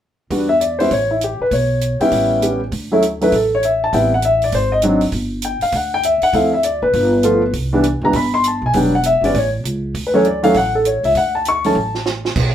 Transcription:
0.30 E2 G3 B3 D4 F#4, kick, open hi-hat
0.49 E5
0.61 D5, closed hi-hat
0.79 G3 B3 C#4 E4 C5, open hi-hat
0.91 A1 C#5, kick, open hi-hat
1.11 E4
1.21 G4, closed hi-hat
1.40 B4, muted upright bass stroke
1.51 B1 C#5, kick, open hi-hat
1.81 closed hi-hat
2.00 G3 B3 C#4 E4 G5, muted upright bass stroke, open hi-hat
2.11 A1, kick, open hi-hat
2.42 G3 B3 C#4 G4, closed hi-hat
2.72 D2, kick, open hi-hat
2.92 F#3 A3 C#4 E4
3.02 closed hi-hat
3.21 F#3 A3 C#4 E4 B4, open hi-hat
3.32 A1 A4, kick, open hi-hat
3.55 C#5
3.63 E5, closed hi-hat
3.84 A5
3.93 A1 G3 B3 C4 E4 G5, kick, open hi-hat
4.14 F#5
4.22 E5, closed hi-hat
4.42 D5, open hi-hat
4.52 G#1 C5, kick, open hi-hat
4.72 D#5
4.82 F#3 C4 D4 D#4, closed hi-hat
5.01 open hi-hat
5.12 G1, kick, open hi-hat
5.42 G5, closed hi-hat
5.61 F5, muted upright bass stroke, open hi-hat
5.72 D2 F#5, kick, open hi-hat
5.94 G5
6.03 E5, closed hi-hat
6.22 F#5, muted upright bass stroke, open hi-hat
6.33 D2 F3 A3 C4 E4 F5, kick, open hi-hat
6.53 E5
6.63 D5, closed hi-hat
6.82 F#1 B4
6.93 G1, kick, open hi-hat
7.23 F3 A3 B3 F4, closed hi-hat
7.53 C2, kick, open hi-hat
7.73 E3 G3 B3 D4
7.83 closed hi-hat
8.02 C#2 E3 G3 B3 D4 A#5
8.13 G1 B5, kick, open hi-hat
8.34 C6
8.44 closed hi-hat
8.48 A5
8.62 B1
8.66 G#5
8.73 E1 F#3 G3 B3 D4 G5, kick, open hi-hat
8.95 F#5
9.03 E5, closed hi-hat
9.21 G1 E3 G3 B3 C#4 D5, open hi-hat
9.35 A1 C#5, kick, open hi-hat
9.64 C#2, closed hi-hat
9.94 D2, kick, open hi-hat
10.07 B4
10.14 E3 F#3 A3 C#4 C#5
10.25 D5, closed hi-hat
10.43 E3 F#3 A3 C#4 F5, open hi-hat
10.54 A1 F#5, kick, open hi-hat
10.75 A4
10.85 C#5, closed hi-hat
11.03 C#2 E5, open hi-hat
11.15 D2 F#5, kick, open hi-hat
11.35 A5
11.45 C#6, closed hi-hat
11.64 E3 F#3 A3 C#4 A5, open hi-hat
11.75 A1
11.95 snare
12.06 snare
12.25 snare
12.36 B1, kick, crash

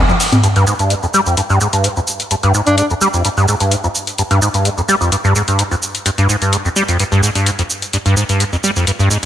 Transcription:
0.09 F2, high tom, shaker
0.20 open hi-hat, ride, shaker
0.32 closed hi-hat, mid tom, high conga, shaker
0.43 G2, closed hi-hat, shaker
0.56 G2, closed hi-hat, shaker
0.67 G#2, shaker
0.79 G2, closed hi-hat, shaker
0.90 G#2, closed hi-hat, shaker
1.03 F2, shaker
1.14 G3, shaker
1.26 F2, shaker
1.37 G2, closed hi-hat, shaker
1.50 G2, shaker
1.61 G#2, shaker
1.73 G2, closed hi-hat, shaker
1.84 G#2, closed hi-hat, shaker
1.96 F2, shaker
2.07 shaker
2.20 closed hi-hat, shaker
2.31 G2, closed hi-hat, shaker
2.43 G2, closed hi-hat, shaker
2.54 G#2, shaker
2.67 G2 D4, closed hi-hat, shaker
2.78 G#2 D4, closed hi-hat, shaker
2.90 F2, shaker
3.01 G3, shaker
3.14 F2, shaker
3.25 G2, closed hi-hat, shaker
3.37 G2, shaker
3.48 G#2, shaker
3.60 G2, closed hi-hat, shaker
3.71 G#2, closed hi-hat, shaker
3.84 F2, shaker
3.95 shaker
4.07 closed hi-hat, shaker
4.18 G2, closed hi-hat, shaker
4.31 G2, closed hi-hat, shaker
4.42 G#2, shaker
4.54 G2, closed hi-hat, shaker
4.65 G#2, closed hi-hat, shaker
4.78 F2, shaker
4.89 G3, shaker
5.01 F2, shaker
5.12 G2, closed hi-hat, shaker
5.24 G2, shaker
5.35 G#2, shaker
5.48 G2, closed hi-hat, shaker
5.59 G#2, closed hi-hat, shaker
5.71 F2, shaker
5.82 shaker
5.95 closed hi-hat, shaker
6.06 G2, closed hi-hat, shaker
6.18 G2, closed hi-hat, shaker
6.29 G#2, shaker
6.42 G2, closed hi-hat, shaker
6.53 G#2, closed hi-hat, shaker
6.65 F2, shaker
6.76 G3, shaker
6.88 F2, closed hi-hat, shaker
7.00 G2, closed hi-hat, shaker
7.12 G2, shaker
7.23 G#2, shaker
7.35 G2, closed hi-hat, shaker
7.46 G#2, closed hi-hat, shaker
7.59 F2, closed hi-hat, shaker
7.70 shaker
7.82 closed hi-hat, shaker
7.93 G2, closed hi-hat, shaker
8.06 G2, closed hi-hat, shaker
8.17 G#2, shaker
8.29 G2, closed hi-hat, shaker
8.40 G#2, closed hi-hat, shaker
8.53 F2, shaker
8.64 G3, shaker
8.76 F2, shaker
8.87 G2, closed hi-hat, shaker
8.99 G2, shaker
9.10 G#2, shaker

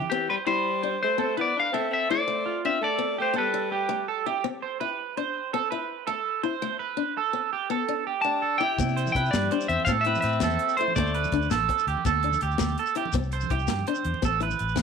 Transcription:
0.02 low conga
0.10 E3 C4 G4
0.29 G3 B4 C5
0.47 G3 E4 C5 B5
0.83 D4 C5
1.03 A3 C5
1.18 C4 A4
1.37 B3 E4 B4
1.41 D5
1.57 D4 F5
1.73 A3 C4 A4 E5
1.91 C4 E5
2.10 A3 E4 C5 D5
2.28 A3
2.46 F4
2.65 C4 D4 E5
2.81 A3 A4 D5
2.98 C4
3.18 A3 G4 C5
3.34 B3 A4
3.38 G3 B4
3.54 muted steel-string acoustic guitar stroke
3.72 G4
3.89 A3
4.08 A4
4.26 E4 G4
4.44 C4
4.62 C5
4.80 E4 B4
5.17 D4 C5
5.53 C4 A4
5.71 E4 B4
6.07 A3 A4
6.43 E4 C5
6.62 A3
6.79 B4
6.97 D4
7.17 A4
7.33 C4
7.53 G4
7.70 B3 A4
7.88 D4
8.07 G4
8.22 A3 D4 A5
8.42 A4
8.58 E4 G4 G5
8.63 E4
8.78 C3 C4, kick, closed hi-hat, high conga, shekere
8.89 shekere
8.96 C5, closed hi-hat, shekere
9.07 low conga, shekere
9.12 C3 E4 B4 G5, kick, closed hi-hat
9.16 shekere
9.25 low conga, shekere
9.31 G2 G3 D5, snare, closed hi-hat, high conga, low conga, shekere
9.43 low conga
9.51 D4 C5, closed hi-hat
9.61 low conga, shekere
9.68 E2 C4 E5, closed hi-hat
9.80 low conga
9.85 A2 C4 F5, kick, closed hi-hat, shekere
9.89 A4, high conga, low conga
10.00 E5, low conga
10.05 C4 E4 B4, closed hi-hat, low conga
10.15 low conga, shekere
10.20 A2 C4 E5, snare, closed hi-hat, shekere
10.32 shekere
10.40 E2 A3 A4, snare, closed hi-hat, high conga, shekere
10.51 low conga, shekere
10.59 closed hi-hat
10.69 shekere
10.77 A3 E4 C5, closed hi-hat, low conga
10.88 low conga
10.95 D2 A3 D5, kick, closed hi-hat, high conga, shekere
11.07 shekere
11.14 B4, closed hi-hat
11.24 low conga, shekere
11.32 D2 D4, kick, closed hi-hat, shekere
11.42 low conga, shekere
11.51 A1 A4, snare, closed hi-hat, high conga, low conga, shekere
11.61 low conga
11.69 C4, kick, closed hi-hat
11.78 low conga, shekere
11.87 D2 G4, closed hi-hat
11.97 low conga
12.05 D2 A4, muted steel-string acoustic guitar stroke, kick, closed hi-hat, high conga, low conga, shekere
12.15 low conga
12.23 D4, closed hi-hat, low conga
12.32 low conga, shekere
12.41 D2 G4, closed hi-hat, shekere
12.51 shekere
12.58 D2 A3, snare, closed hi-hat, high conga, shekere
12.68 low conga, shekere
12.78 A4, closed hi-hat
12.86 shekere
12.95 E4 G4, closed hi-hat, low conga
13.05 low conga
13.13 C2 C4, kick, closed hi-hat, high conga, shekere
13.23 shekere
13.32 C5, closed hi-hat, shekere
13.41 low conga, shekere
13.50 C2 E4 G4, kick, closed hi-hat, shekere
13.59 low conga, shekere
13.67 G2, snare, closed hi-hat, high conga, low conga, shekere
13.79 low conga
13.87 D4 C5, closed hi-hat
13.95 low conga, shekere
14.05 E2, closed hi-hat
14.14 low conga
14.22 A1 C4 A4, kick, closed hi-hat, high conga, low conga, shekere
14.40 E4 B4, closed hi-hat
14.51 low conga, shekere
14.58 A1, closed hi-hat, low conga, shekere
14.69 shekere
14.76 E2 A3, snare, closed hi-hat, high conga, shekere

